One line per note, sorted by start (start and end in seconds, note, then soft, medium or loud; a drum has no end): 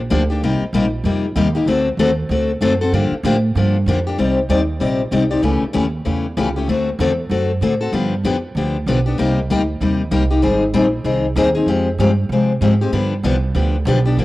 0.00 0.10 A#1 medium
0.10 0.42 D2 loud
0.10 0.22 D3 medium
0.10 0.22 F3 medium
0.10 0.22 A#3 loud
0.10 0.22 D4 medium
0.10 0.22 G4 medium
0.30 0.43 A#3 soft
0.30 0.42 D4 medium
0.30 0.42 G4 medium
0.43 0.60 C2 medium
0.43 0.63 C3 medium
0.43 0.63 G3 medium
0.43 0.63 A#3 medium
0.43 0.63 D#4 medium
0.43 0.63 G4 medium
0.61 muted upright bass stroke soft
0.73 1.03 A#1 medium
0.73 0.85 C3 medium
0.73 0.85 G3 medium
0.73 0.85 A#3 loud
0.73 0.85 D#4 loud
0.73 0.85 G4 loud
1.04 1.35 F2 medium
1.04 1.25 C3 medium
1.04 1.25 G3 medium
1.04 1.25 A#3 medium
1.04 1.25 D#4 medium
1.04 1.25 G4 medium
1.35 1.65 D#2 loud
1.35 1.47 C3 medium
1.35 1.47 G3 loud
1.35 1.47 A#3 medium
1.35 1.47 D#4 loud
1.35 1.48 G4 loud
1.55 1.67 A#3 medium
1.55 1.67 D#4 medium
1.55 1.67 G4 medium
1.66 1.97 D2 medium
1.66 1.87 D3 medium
1.66 1.87 A3 medium
1.66 1.88 C4 medium
1.66 1.88 F#4 medium
1.66 1.88 A4 medium
1.97 2.28 D#2 medium
1.97 2.10 D3 medium
1.97 2.10 A3 loud
1.97 2.10 C4 loud
1.97 2.10 F#4 loud
1.97 2.10 A4 loud
2.29 2.60 D2 medium
2.29 2.50 D3 medium
2.29 2.51 A3 medium
2.29 2.51 C4 medium
2.29 2.51 F#4 medium
2.29 2.51 A4 medium
2.61 2.91 F#2 loud
2.61 2.72 D3 medium
2.61 2.72 A3 medium
2.61 2.73 C4 medium
2.61 2.73 F#4 loud
2.61 2.73 A4 loud
2.81 2.93 C4 medium
2.81 2.93 F#4 medium
2.81 2.92 A4 medium
2.92 3.10 G2 medium
2.92 3.13 D3 medium
2.92 3.13 F3 medium
2.92 3.13 A#3 medium
2.92 3.13 D4 medium
2.92 3.13 G4 medium
3.11 muted upright bass stroke soft
3.23 3.54 A2 loud
3.23 3.35 D3 medium
3.23 3.35 F3 loud
3.23 3.35 A#3 loud
3.23 3.36 D4 loud
3.23 3.36 G4 loud
3.55 3.85 G2 loud
3.55 3.76 D3 medium
3.55 3.76 F3 medium
3.55 3.76 A#3 medium
3.55 3.76 D4 medium
3.55 3.76 G4 medium
3.86 4.17 F2 loud
3.86 3.98 D3 medium
3.86 3.98 F3 medium
3.86 3.98 A#3 medium
3.86 3.98 D4 medium
3.86 3.98 G4 medium
4.07 4.18 A#3 medium
4.07 4.19 D4 medium
4.07 4.18 G4 medium
4.18 4.48 C2 medium
4.18 4.38 C3 medium
4.18 4.38 G3 medium
4.18 4.38 C4 medium
4.18 4.38 D#4 medium
4.18 4.38 G4 medium
4.18 4.39 D5 medium
4.49 4.79 D#2 medium
4.49 4.60 C3 medium
4.49 4.60 G3 medium
4.49 4.60 C4 medium
4.49 4.60 D#4 medium
4.49 4.60 G4 loud
4.49 4.60 D5 medium
4.80 5.10 A#1 medium
4.80 5.00 C3 medium
4.80 5.00 G3 medium
4.80 5.01 C4 medium
4.80 5.01 D#4 medium
4.80 5.01 G4 medium
4.80 5.01 D5 medium
5.11 5.42 C2 medium
5.11 5.22 C3 medium
5.11 5.23 G3 medium
5.11 5.23 C4 medium
5.11 5.23 D#4 medium
5.11 5.23 G4 medium
5.11 5.23 D5 medium
5.31 5.42 C4 soft
5.31 5.43 D#4 medium
5.31 5.42 G4 medium
5.31 5.42 D5 medium
5.42 5.60 C#2 medium
5.42 5.63 C#3 medium
5.42 5.63 E3 medium
5.42 5.63 A3 medium
5.42 5.63 C#4 medium
5.42 5.63 G4 medium
5.73 6.05 D#2 medium
5.73 5.84 C#3 medium
5.73 5.85 E3 medium
5.73 5.85 A3 loud
5.73 5.85 C#4 loud
5.73 5.85 G4 medium
6.05 6.36 E2 medium
6.05 6.25 C#3 medium
6.05 6.25 E3 medium
6.05 6.25 A3 medium
6.05 6.26 C#4 medium
6.05 6.26 G4 medium
6.37 6.67 C#2 loud
6.37 6.48 C#3 medium
6.37 6.48 E3 medium
6.37 6.48 A3 medium
6.37 6.48 C#4 medium
6.37 6.48 G4 loud
6.56 6.68 A3 soft
6.56 6.68 C#4 medium
6.56 6.68 G4 medium
6.68 6.98 D2 medium
6.68 6.89 D3 medium
6.68 6.88 A3 medium
6.68 6.89 C4 medium
6.68 6.89 F#4 medium
6.68 6.89 A4 medium
6.99 7.29 E2 loud
6.99 7.10 D3 medium
6.99 7.11 A3 medium
6.99 7.11 C4 medium
6.99 7.11 F#4 medium
6.99 7.11 A4 loud
7.29 7.60 F#2 medium
7.29 7.51 D3 medium
7.29 7.51 A3 medium
7.29 7.51 C4 medium
7.29 7.51 F#4 medium
7.29 7.51 A4 medium
7.61 7.92 A2 medium
7.61 7.73 D3 medium
7.61 7.73 A3 medium
7.61 7.73 C4 medium
7.61 7.73 F#4 medium
7.61 7.73 A4 medium
7.81 7.93 C4 medium
7.81 7.93 F#4 medium
7.81 7.92 A4 medium
7.92 8.23 G2 medium
7.92 8.13 D3 medium
7.92 8.13 F3 medium
7.92 8.13 B3 medium
7.92 8.13 D4 medium
7.92 8.13 G4 medium
8.24 8.54 F2 medium
8.24 8.35 D3 medium
8.24 8.35 F3 medium
8.24 8.36 B3 medium
8.24 8.36 D4 medium
8.24 8.36 G4 medium
8.55 8.85 D2 medium
8.55 8.76 D3 medium
8.55 8.76 F3 medium
8.55 8.76 B3 medium
8.55 8.76 D4 medium
8.55 8.76 G4 medium
8.86 9.17 B1 medium
8.86 8.98 D3 medium
8.86 8.98 F3 medium
8.86 8.98 B3 medium
8.86 8.99 D4 medium
8.86 8.99 G4 medium
9.06 9.19 B3 soft
9.06 9.18 D4 medium
9.06 9.18 G4 medium
9.18 9.49 C2 medium
9.18 9.38 C3 medium
9.18 9.38 G3 medium
9.18 9.39 A#3 medium
9.18 9.39 D#4 medium
9.18 9.39 G4 medium
9.50 9.80 D2 medium
9.50 9.61 C3 medium
9.50 9.61 G3 medium
9.50 9.61 A#3 medium
9.50 9.61 D#4 loud
9.50 9.61 G4 loud
9.80 10.10 D#2 medium
9.80 10.01 C3 medium
9.80 10.01 G3 medium
9.80 10.01 A#3 medium
9.80 10.01 D#4 medium
9.80 10.01 G4 medium
10.11 10.42 C2 medium
10.11 10.22 C3 medium
10.11 10.23 G3 medium
10.11 10.23 A#3 medium
10.11 10.23 D#4 medium
10.11 10.23 G4 medium
10.31 10.42 A#3 medium
10.31 10.42 D#4 medium
10.31 10.42 G4 medium
10.42 10.73 G#1 medium
10.42 10.63 D#3 medium
10.42 10.63 G3 medium
10.42 10.63 C4 medium
10.42 10.63 D#4 medium
10.42 10.63 G#4 medium
10.74 11.04 A#1 medium
10.74 10.85 D#3 medium
10.74 10.85 G3 loud
10.74 10.85 C4 loud
10.74 10.85 D#4 loud
10.74 10.85 G#4 loud
11.04 11.35 C2 medium
11.04 11.25 D#3 medium
11.04 11.25 G3 medium
11.04 11.25 C4 medium
11.04 11.26 D#4 medium
11.04 11.26 G#4 medium
11.36 11.66 D#2 loud
11.36 11.48 D#3 loud
11.36 11.48 G3 medium
11.36 11.48 C4 loud
11.36 11.48 D#4 loud
11.36 11.48 G#4 loud
11.55 11.67 C4 soft
11.55 11.68 D#4 medium
11.55 11.67 G#4 medium
11.66 11.97 F2 medium
11.66 11.88 F3 medium
11.66 11.88 G#3 medium
11.66 11.88 C4 medium
11.66 11.89 G4 medium
11.98 12.29 G2 medium
11.98 12.10 F3 medium
11.98 12.11 G#3 medium
11.98 12.11 C4 loud
11.98 12.11 G4 medium
12.29 12.60 C3 medium
12.29 12.51 F3 medium
12.29 12.52 G#3 medium
12.29 12.52 C4 medium
12.29 12.52 G4 medium
12.61 12.92 G#2 loud
12.61 12.73 F3 medium
12.61 12.73 G#3 medium
12.61 12.73 C4 medium
12.61 12.73 G4 medium
12.81 12.93 G#3 medium
12.81 12.92 C4 medium
12.81 12.92 G4 medium
12.92 13.23 G2 medium
12.92 13.13 D3 medium
12.92 13.13 F3 medium
12.92 13.13 B3 medium
12.92 13.13 D4 medium
12.92 13.13 G4 medium
13.23 13.54 C2 loud
13.23 13.35 D3 medium
13.23 13.35 F3 medium
13.23 13.35 B3 medium
13.23 13.36 D4 loud
13.23 13.36 G4 medium
13.55 13.85 D2 loud
13.55 13.75 D3 medium
13.55 13.75 F3 medium
13.55 13.75 B3 medium
13.55 13.76 D4 medium
13.55 13.76 G4 medium
13.85 14.16 B1 loud
13.85 13.98 D3 medium
13.85 13.98 F3 medium
13.85 13.98 B3 medium
13.85 13.98 D4 loud
13.85 13.98 G4 loud
14.05 14.18 B3 medium
14.05 14.18 D4 medium
14.05 14.17 G4 medium
14.17 14.25 G1 medium
14.17 14.25 D3 medium
14.17 14.25 F3 medium
14.17 14.25 A#3 medium
14.17 14.25 D4 medium
14.17 14.25 G4 medium